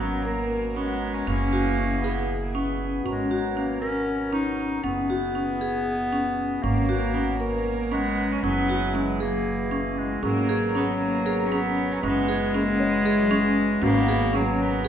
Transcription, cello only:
0.00 0.24 B3 medium
0.23 0.78 A#3 medium
0.76 1.14 B3 medium
1.13 2.00 C#4 medium
2.01 2.38 B3 medium
2.41 2.56 A#3 medium
2.54 2.93 B3 medium
6.64 7.15 A#3 medium
7.14 7.40 B3 medium
7.41 7.93 A#3 medium
7.92 8.34 B3 loud
8.32 8.44 C#4 loud
8.46 8.97 B3 loud
8.95 9.23 G#3 medium
9.22 9.73 F#3 medium
10.25 10.78 A#3 loud
10.76 10.99 B3 medium
11.00 11.48 A#3 medium
11.46 11.53 C#4 medium
11.52 11.93 B3 loud
11.92 12.04 C#4 medium
12.04 12.57 B3 loud
12.55 12.83 A#3 medium
12.82 13.20 G#3 medium
13.19 13.35 F#3 medium
13.34 13.71 G#3 medium
13.85 14.36 B3 loud
14.35 14.63 A#3 medium
14.62 14.88 B3 medium

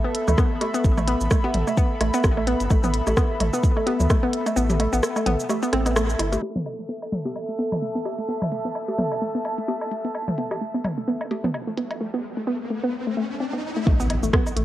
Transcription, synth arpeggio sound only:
0.04 0.12 B3 medium
0.28 0.33 A3 medium
0.38 0.47 B3 loud
0.61 0.67 A3 medium
0.74 0.81 B3 loud
0.97 1.02 A3 medium
1.08 1.17 B3 loud
1.31 1.37 A3 medium
1.44 1.51 B3 loud
1.67 1.72 A3 medium
1.77 1.87 B3 loud
2.01 2.07 A3 medium
2.14 2.21 B3 loud
2.37 2.42 A3 medium
2.47 2.57 B3 loud
2.70 2.77 A3 medium
2.84 2.91 B3 loud
3.07 3.12 A3 medium
3.17 3.26 B3 loud
3.40 3.47 A3 medium
3.53 3.61 B3 loud
3.77 3.81 A3 medium
3.87 3.96 B3 loud
4.10 4.16 A3 medium
4.23 4.30 B3 loud
4.46 4.51 A3 medium
4.56 4.66 B3 loud
4.80 4.86 A3 medium
4.93 5.00 B3 loud
5.16 5.21 A3 medium
5.26 5.36 B3 loud
5.49 5.56 A3 medium
5.63 5.70 B3 loud
5.73 5.79 C4 loud
5.86 5.89 B3 medium
5.96 6.02 A3 medium
6.19 6.23 E4 medium
6.32 6.40 A3 medium
6.42 6.49 A3 medium
6.55 6.63 B3 loud
6.79 6.84 A3 medium
6.89 6.98 B3 loud
7.12 7.19 A3 medium
7.25 7.33 B3 medium
7.49 7.54 A3 medium
7.59 7.68 B3 loud
7.82 7.88 A3 medium
7.95 8.02 B3 loud
8.18 8.23 A3 medium
8.29 8.38 B3 loud
8.52 8.58 A3 medium
8.65 8.72 B3 medium
8.88 8.93 A3 medium
8.98 9.08 B3 loud
9.22 9.28 A3 medium
9.35 9.42 B3 medium
9.58 9.63 A3 medium
9.68 9.78 B3 medium
9.91 9.98 A3 medium
10.05 10.12 B3 loud
10.28 10.33 A3 medium
10.38 10.47 B3 medium
10.61 10.67 A3 medium
10.74 10.82 B3 medium
10.98 11.02 A3 medium
11.08 11.17 B3 loud
11.31 11.37 A3 medium
11.44 11.51 B3 loud
11.67 11.72 A3 medium
11.77 11.87 B3 loud
12.01 12.07 A3 medium
12.14 12.21 B3 loud
12.37 12.42 A3 medium
12.47 12.57 B3 loud
12.70 12.77 A3 medium
12.84 12.91 B3 loud
13.07 13.12 A3 medium
13.17 13.21 A3 loud
13.40 13.50 C4 medium
13.53 13.61 B3 medium
13.77 13.82 A3 medium
13.87 13.93 A3 medium
14.00 14.07 B3 loud
14.23 14.28 A3 medium
14.33 14.43 B3 loud
14.56 14.63 A3 medium

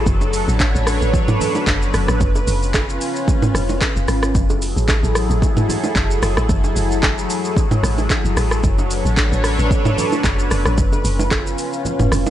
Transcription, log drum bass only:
0.06 0.46 F#1 loud
0.48 0.74 A1 loud
0.75 1.00 A1 loud
1.02 1.13 A1 medium
1.67 1.93 F#1 loud
1.94 2.08 F#1 loud
2.09 2.20 A1 loud
2.21 2.46 F#1 loud
2.47 2.99 F#1 loud
3.55 3.80 F1 medium
3.96 4.08 F1 loud
4.08 4.34 G#1 medium
4.35 4.75 F#1 loud
4.77 5.02 A1 medium
5.03 5.29 A1 loud
5.30 5.42 A1 loud
5.96 6.21 F#1 loud
6.23 6.37 F#1 loud
6.37 6.49 A1 medium
6.49 6.75 F#1 loud
6.76 7.27 F#1 loud
7.83 8.09 A1 loud
8.25 8.36 F#1 medium
8.37 8.63 A1 medium
8.64 9.03 F#1 loud
9.05 9.31 A1 loud
9.32 9.58 A1 loud
9.59 9.70 A1 medium
10.24 10.50 F#1 loud
10.51 10.65 F#1 loud
10.66 10.77 A1 medium
10.78 11.04 F#1 loud
11.05 11.56 F#1 loud
12.00 12.11 F1 medium
12.12 12.26 F1 loud

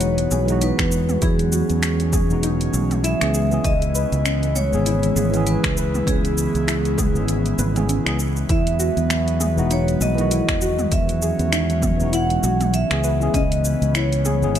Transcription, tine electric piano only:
0.00 0.44 E3 medium
0.00 0.44 G#3 medium
0.00 0.45 B3 medium
0.00 0.45 D#4 medium
0.00 0.45 F#4 loud
0.46 2.25 E3 medium
0.46 2.26 G#3 medium
0.46 2.26 B3 medium
0.50 2.27 D#4 medium
0.50 2.28 F#4 loud
2.27 3.16 E3 medium
2.27 3.16 G#3 medium
2.27 3.17 B3 medium
2.32 3.18 D#4 medium
2.32 3.19 F#4 medium
3.20 3.47 E3 medium
3.20 3.47 G#3 medium
3.20 3.48 B3 medium
3.20 3.48 C#4 medium
3.20 3.48 G#4 medium
3.50 3.71 E3 medium
3.50 3.72 G#3 medium
3.50 3.72 B3 medium
3.50 3.72 C#4 medium
3.50 3.73 G#4 medium
4.71 5.29 E3 medium
4.71 5.29 G#3 medium
4.71 5.29 B3 medium
4.71 5.30 C#4 medium
4.71 5.30 G#4 loud
5.30 7.10 E3 loud
5.30 7.10 G#3 medium
5.30 7.11 B3 medium
5.35 7.12 C#4 medium
5.35 7.13 G#4 loud
7.14 7.72 E3 medium
7.14 7.72 G#3 medium
7.14 7.72 B3 medium
7.14 7.73 C#4 medium
7.14 7.73 G#4 medium
7.75 8.01 E3 medium
7.75 8.02 G#3 medium
7.75 8.02 B3 medium
7.75 8.03 C#4 medium
7.75 8.03 G#4 medium
8.05 8.17 E3 medium
8.05 8.17 G#3 medium
8.05 8.18 B3 medium
8.05 8.18 C#4 medium
8.05 8.19 G#4 loud
9.56 10.13 E3 medium
9.56 10.14 G#3 medium
9.56 10.14 B3 medium
9.56 10.14 D#4 medium
9.56 10.15 F#4 loud
10.15 11.94 E3 loud
10.15 11.95 G#3 medium
10.15 11.96 B3 medium
10.19 11.97 D#3 medium
10.19 11.97 F#4 loud
11.97 12.85 E3 medium
11.97 12.86 G#3 medium
11.97 12.87 B3 medium
12.01 12.88 D#4 medium
12.01 12.88 F#4 medium
12.90 13.17 E3 medium
12.90 13.17 G#3 medium
12.90 13.17 B3 medium
12.90 13.18 C#4 medium
12.90 13.18 G#4 medium
13.20 13.41 E3 medium
13.20 13.41 G#3 medium
13.20 13.42 B3 medium
13.20 13.42 C#4 medium
13.20 13.42 G#4 loud
14.41 14.59 E3 loud
14.41 14.59 G#3 medium
14.41 14.59 B3 medium
14.41 14.59 C#4 medium
14.41 14.59 G#4 loud

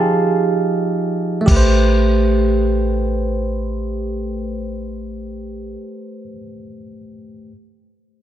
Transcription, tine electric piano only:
0.00 1.43 F3 medium
0.00 1.44 D#4 medium
0.00 1.45 G4 medium
0.00 1.47 G#4 medium
0.00 1.50 F5 soft
0.00 1.50 A5 medium
1.41 6.23 A3 medium
1.46 6.28 G4 medium
1.51 6.33 B4 medium
1.56 6.38 C5 medium

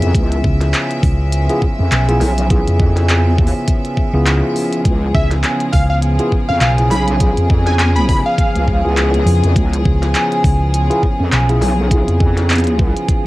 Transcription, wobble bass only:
0.02 0.13 F2 loud
0.14 0.42 C#2 loud
1.79 1.89 F2 medium
2.21 2.64 B1 loud
2.67 3.27 F2 loud
3.27 3.53 E2 loud
4.85 5.13 C#2 medium
6.49 6.60 F2 medium
6.91 7.35 B1 loud
7.37 8.23 F2 loud
8.55 8.82 C#2 loud
8.85 9.25 C#2 loud
9.43 9.54 F2 loud
9.56 9.83 C#2 loud
11.20 11.30 F2 medium
11.62 12.06 B1 loud
12.08 12.93 F2 medium

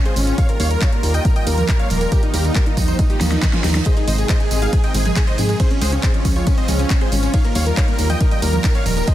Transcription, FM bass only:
0.16 0.33 G#1 medium
0.60 0.76 D#2 loud
1.03 1.20 D#2 medium
1.47 1.63 D#2 loud
1.90 2.07 D#1 medium
2.34 2.50 D#2 loud
2.77 2.94 D#2 medium
3.21 3.37 D#2 medium
3.64 3.81 D#2 medium
4.08 4.24 G#1 loud
4.51 4.68 G#1 medium
4.95 5.11 G#1 loud
5.38 5.55 G#2 medium
5.82 5.98 C#2 loud
6.25 6.42 C#2 medium
6.69 6.85 C#2 loud
7.12 7.29 G#1 medium
7.56 7.72 D#2 loud
7.99 8.15 D#2 medium
8.42 8.59 D#2 loud
8.86 9.02 D#1 medium

